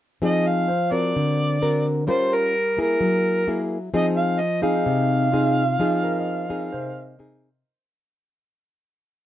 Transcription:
0.22 1.13 F3 medium
0.22 0.69 C4 medium
0.22 0.69 D#4 medium
0.22 0.69 G#4 medium
0.22 0.48 D#5 loud
0.47 0.93 F5 loud
0.68 1.34 C5 soft
0.92 1.58 C4 medium
0.92 1.58 F#4 medium
0.92 1.58 A#4 medium
0.92 1.85 D5 medium
1.16 2.06 D3 medium
1.62 2.04 C4 medium
1.62 2.05 F#4 medium
1.62 2.05 A#4 medium
2.07 2.98 G3 medium
2.07 2.54 C#4 medium
2.07 2.54 F4 medium
2.07 3.13 G4 soft
2.07 2.54 A#4 medium
2.07 2.36 C5 loud
2.34 2.79 A#4 loud
2.77 3.43 A#3 medium
2.77 3.44 E4 medium
2.77 3.44 G#4 medium
2.81 3.68 A#4 medium
3.00 3.91 F#3 medium
3.48 3.77 A#3 medium
3.48 3.77 E4 medium
3.48 3.77 G#4 medium
3.94 4.84 F3 medium
3.94 4.39 C4 medium
3.94 4.40 D#4 medium
3.94 4.40 G#4 medium
3.94 4.05 D#5 loud
4.17 4.42 F5 medium
4.40 4.62 D#5 medium
4.62 5.28 C4 medium
4.62 5.68 D#4 medium
4.62 5.28 D#4 medium
4.62 5.29 G#4 medium
4.62 7.14 F5 loud
4.86 5.76 C3 medium
5.32 5.63 C4 medium
5.32 5.63 D#4 medium
5.32 6.38 F4 medium
5.32 5.63 G#4 medium
5.79 6.70 F3 medium
5.79 6.45 C4 medium
5.79 6.45 D#4 medium
5.79 6.45 G#4 medium
6.03 7.08 A#4 medium
6.19 7.22 D#5 soft
6.49 7.15 C4 medium
6.49 7.15 D#4 medium
6.49 7.15 G#4 medium
6.72 7.63 C3 medium
6.72 7.78 C5 medium
7.19 7.48 C4 soft
7.19 7.48 D#4 medium
7.19 7.49 G#4 medium

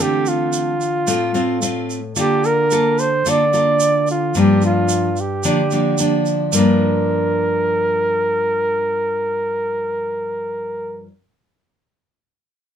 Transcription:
0.00 1.05 D3 medium
0.00 0.72 A3 medium
0.00 0.72 C4 medium
0.00 0.72 F4 medium
0.00 0.30 G4 medium
0.26 1.91 F4 medium
0.26 shaker soft
0.53 shaker medium
0.81 shaker soft
1.07 2.14 A2 medium
1.07 1.30 A3 medium
1.07 1.30 C4 medium
1.07 1.31 F4 medium
1.07 shaker medium
1.34 1.57 A3 medium
1.34 1.58 C4 medium
1.34 1.58 F4 medium
1.34 shaker soft
1.62 1.99 A3 soft
1.62 1.99 C4 soft
1.62 1.99 F4 medium
1.62 shaker medium
1.90 shaker soft
2.16 3.23 D3 medium
2.16 2.67 A#3 medium
2.16 2.67 F4 medium
2.16 2.47 G4 loud
2.16 2.67 A4 medium
2.16 shaker medium
2.44 3.01 A#4 loud
2.44 shaker soft
2.71 3.07 A#3 medium
2.71 3.07 F4 medium
2.71 3.07 A4 medium
2.71 shaker medium
2.98 3.31 C5 medium
2.98 shaker soft
3.26 4.32 D3 medium
3.26 3.42 A#3 medium
3.26 3.42 F4 medium
3.26 3.43 A4 medium
3.26 4.09 D5 medium
3.26 shaker medium
3.53 4.31 A#3 medium
3.53 4.31 F4 soft
3.53 4.31 A4 medium
3.53 shaker soft
3.80 shaker medium
4.07 4.40 F4 medium
4.07 shaker soft
4.34 5.42 G2 medium
4.34 5.09 F3 medium
4.34 5.09 A#3 medium
4.34 5.09 D4 medium
4.34 shaker medium
4.39 4.64 G4 medium
4.62 5.22 F4 medium
4.62 shaker soft
4.89 shaker medium
5.17 6.28 G4 medium
5.17 shaker soft
5.43 6.51 D3 medium
5.43 5.60 F3 medium
5.43 5.61 A#3 medium
5.43 5.61 D4 medium
5.43 shaker medium
5.71 5.95 F3 medium
5.71 5.95 A#3 soft
5.71 5.95 D4 medium
5.71 shaker soft
5.98 6.51 F3 soft
5.98 6.51 A#3 soft
5.98 6.52 D4 medium
5.98 shaker medium
6.26 shaker soft
6.52 11.06 G2 medium
6.52 11.07 F3 medium
6.52 11.10 A#3 medium
6.52 11.04 A#4 medium
6.52 shaker medium
6.57 11.11 D4 medium

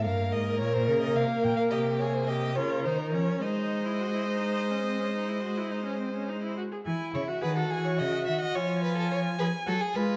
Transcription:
0.04 0.34 G2 medium
0.04 2.53 A#3 medium
0.04 1.69 A#4 loud
0.04 0.34 F5 medium
0.33 0.62 G#2 medium
0.33 0.60 D#5 medium
0.60 0.90 A#2 medium
0.60 0.75 C#5 medium
0.73 0.87 C5 medium
0.88 1.15 C#3 medium
0.88 1.01 A#4 medium
1.02 1.17 D#5 medium
1.16 1.24 C3 medium
1.16 1.45 F5 medium
1.44 1.52 A#2 medium
1.44 1.56 G5 loud
1.57 1.63 F5 medium
1.70 2.58 C3 medium
1.70 2.02 G4 medium
1.70 1.78 D#5 medium
1.99 2.30 G#4 medium
1.99 2.15 C#5 medium
2.14 2.29 C5 medium
2.27 2.59 G4 medium
2.27 2.57 D#5 medium
2.56 2.86 C#3 medium
2.56 2.87 F4 medium
2.56 3.42 A#4 medium
2.56 2.84 C#5 medium
2.85 3.15 D#3 medium
2.85 3.16 D#4 medium
2.85 3.00 C5 medium
2.99 3.12 A#4 medium
3.13 3.41 F3 medium
3.13 3.44 C#4 medium
3.13 3.43 C#5 medium
3.42 6.53 G#3 medium
3.42 3.87 D#4 medium
3.42 6.53 C5 medium
3.42 6.57 D#5 medium
3.86 4.02 E4 medium
4.00 4.14 F#4 medium
4.14 4.28 E4 medium
4.28 4.73 D#4 medium
4.71 4.85 C#4 medium
4.85 5.01 C4 medium
5.00 5.14 C#4 medium
5.14 5.30 D#4 medium
5.29 5.42 E4 medium
5.43 5.59 F#4 medium
5.57 5.73 E4 medium
5.71 5.85 D#4 medium
5.86 5.99 C#4 medium
6.00 6.14 C4 medium
6.15 6.30 C#4 medium
6.29 6.42 D#4 medium
6.42 6.57 E4 medium
6.57 6.63 F#4 medium
6.72 6.77 G#4 medium
6.86 6.94 E3 medium
6.86 7.30 E4 medium
6.86 7.12 G#5 medium
7.14 7.22 C#3 medium
7.14 7.23 C#5 medium
7.14 7.44 E5 medium
7.28 7.43 F#4 medium
7.42 7.70 D#3 medium
7.42 7.58 G#4 medium
7.42 7.56 B4 medium
7.42 7.70 F#5 medium
7.56 8.57 F#4 medium
7.56 7.72 A4 medium
7.71 8.01 E3 medium
7.71 7.87 G#4 medium
7.71 7.98 G#5 medium
7.85 8.00 C#5 medium
7.99 8.27 C#3 medium
7.99 8.26 D#5 medium
7.99 8.29 E5 medium
8.26 8.36 D#3 medium
8.26 8.41 E5 medium
8.26 8.58 F#5 medium
8.41 8.57 D#5 loud
8.55 9.37 F3 medium
8.55 9.38 F4 medium
8.55 8.83 C#5 loud
8.55 10.17 G#5 medium
8.84 8.96 B4 medium
8.97 9.10 A4 medium
9.11 9.19 C#5 loud
9.39 9.47 F3 medium
9.39 9.47 G#4 medium
9.39 9.47 B4 loud
9.67 9.75 F#3 medium
9.67 9.75 F#4 medium
9.67 9.82 A4 medium
9.81 9.97 G#4 medium
9.95 10.17 G#3 medium
9.95 10.17 F4 medium
9.95 10.17 B4 medium

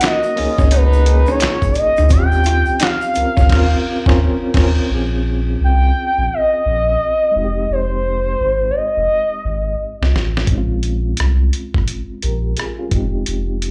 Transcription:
0.00 0.29 D#3 medium
0.00 0.25 A#3 loud
0.00 0.29 B3 medium
0.00 0.25 C#4 loud
0.00 0.26 D#4 loud
0.00 0.17 D#4 medium
0.00 0.26 F#4 loud
0.00 0.29 F#4 medium
0.00 finger snap medium
0.00 snare loud
0.00 clap medium
0.00 closed hi-hat medium
0.00 shaker medium
0.06 0.76 D#5 medium
0.23 shaker soft
0.36 0.47 C#2 soft
0.36 0.64 F3 medium
0.36 0.98 A#3 medium
0.36 0.64 C#4 medium
0.36 0.99 C#4 medium
0.36 0.99 D#4 medium
0.36 0.64 F4 medium
0.36 1.00 G#4 medium
0.36 muted hollow-body jazz guitar stroke soft
0.36 open hi-hat soft
0.58 1.24 C#2 medium
0.58 0.67 C#4 medium
0.58 kick medium
0.58 snare soft
0.58 shaker soft
0.71 1.58 B2 medium
0.71 1.58 B3 medium
0.71 0.86 C#4 medium
0.71 1.58 D#4 medium
0.71 1.32 B4 medium
0.71 closed hi-hat loud
0.71 shaker medium
0.93 shaker soft
1.06 1.99 A#3 medium
1.06 2.00 C#4 medium
1.06 2.00 D#4 medium
1.06 2.01 G#4 medium
1.06 muted hollow-body jazz guitar stroke soft
1.06 closed hi-hat medium
1.26 1.37 C#4 medium
1.26 shaker soft
1.30 1.74 C#5 medium
1.40 1.51 B1 soft
1.40 1.56 F4 medium
1.40 finger snap medium
1.40 snare loud
1.40 clap medium
1.40 closed hi-hat medium
1.40 shaker medium
1.62 1.75 B1 medium
1.62 kick medium
1.62 shaker soft
1.72 1.79 D5 medium
1.72 muted hollow-body jazz guitar stroke soft
1.72 closed hi-hat medium
1.72 shaker soft
1.78 2.11 D#5 loud
1.97 2.10 D2 medium
1.97 2.07 D#4 medium
1.97 shaker soft
2.09 2.64 D#2 loud
2.09 3.03 C4 medium
2.09 3.04 C#4 medium
2.09 3.05 F4 medium
2.09 2.19 F#4 medium
2.09 2.84 G5 loud
2.09 kick loud
2.09 closed hi-hat medium
2.09 shaker medium
2.19 3.08 G4 loud
2.32 shaker soft
2.44 2.61 F4 medium
2.44 closed hi-hat medium
2.44 shaker soft
2.66 2.74 C#2 soft
2.66 shaker soft
2.80 2.95 D#4 medium
2.80 4.21 F5 medium
2.80 finger snap medium
2.80 snare loud
2.80 clap medium
2.80 closed hi-hat medium
2.80 shaker medium
3.01 shaker soft
3.14 3.25 C#2 soft
3.14 3.48 C4 medium
3.14 3.49 C#4 medium
3.14 3.50 F4 medium
3.14 3.51 A#4 medium
3.14 muted hollow-body jazz guitar stroke soft
3.14 closed hi-hat medium
3.14 shaker medium
3.37 3.49 C#2 loud
3.37 3.46 C#4 medium
3.37 kick medium
3.37 snare soft
3.37 shaker soft
3.49 3.76 D#2 loud
3.49 3.75 C4 medium
3.49 3.76 C#4 medium
3.49 3.76 F4 loud
3.49 3.77 A#4 medium
3.49 kick loud
3.49 snare loud
3.49 crash medium
4.06 4.29 D#2 loud
4.06 4.29 C4 loud
4.06 4.29 C#4 loud
4.06 4.30 F4 loud
4.06 4.30 A#4 medium
4.06 kick loud
4.06 snare loud
4.54 4.80 D#2 loud
4.54 4.79 C4 medium
4.54 4.80 C#4 medium
4.54 4.81 F4 medium
4.54 4.81 A#4 medium
4.54 kick loud
4.54 snare medium
4.54 crash medium
4.88 5.56 A#1 loud
4.88 7.29 C4 medium
4.88 7.30 C#4 medium
4.92 7.31 F4 medium
4.92 7.32 G#4 medium
5.61 5.91 C2 medium
5.61 6.35 G5 medium
6.18 6.29 A#1 medium
6.34 7.71 D#5 medium
6.66 6.96 A#1 medium
7.31 10.08 G#3 medium
7.31 10.09 C4 medium
7.36 7.66 F1 medium
7.36 10.10 D#4 medium
7.36 7.44 F#4 medium
7.44 10.14 G4 medium
7.70 8.35 F1 loud
7.70 8.72 C5 medium
8.41 8.71 G#1 medium
8.71 8.77 D5 medium
8.76 10.14 D#5 medium
8.97 9.08 F1 medium
9.45 9.76 G#1 medium
10.02 10.13 C2 medium
10.02 snare medium
10.15 10.45 A1 medium
10.15 snare medium
10.37 snare medium
10.45 12.86 G#3 medium
10.45 12.18 C4 medium
10.45 kick medium
10.45 closed hi-hat medium
10.49 11.14 A#1 loud
10.49 12.19 C#4 medium
10.49 10.57 D#4 medium
10.57 12.24 F4 medium
10.83 closed hi-hat medium
11.17 11.50 C2 medium
11.17 cross-stick medium
11.17 closed hi-hat medium
11.53 closed hi-hat medium
11.74 11.87 A#1 medium
11.74 kick medium
11.74 cross-stick soft
11.88 closed hi-hat medium
12.22 12.54 A#1 medium
12.22 12.56 G4 soft
12.22 12.56 A#4 soft
12.22 closed hi-hat medium
12.57 12.78 F4 soft
12.57 12.78 G#4 medium
12.57 cross-stick medium
12.57 closed hi-hat medium
12.79 13.12 C#4 soft
12.79 13.12 F4 medium
12.89 13.24 F1 medium
12.89 13.71 G#3 medium
12.89 13.71 C4 medium
12.89 kick medium
12.89 closed hi-hat medium
12.93 13.71 D#4 medium
12.93 13.71 G4 medium
13.26 13.71 F1 medium
13.26 closed hi-hat medium
13.62 closed hi-hat medium

